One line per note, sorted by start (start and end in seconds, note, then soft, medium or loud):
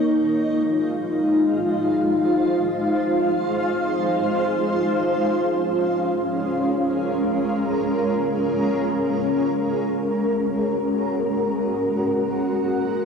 0.00 13.05 G#3 medium
0.00 0.82 A#3 medium
0.00 5.63 D#4 medium
0.00 9.11 F4 medium
0.12 9.10 F5 medium
1.26 6.20 C5 medium
4.62 13.05 C#4 medium
6.31 13.05 A#4 medium
10.15 13.05 F#4 medium
11.22 13.05 F#5 medium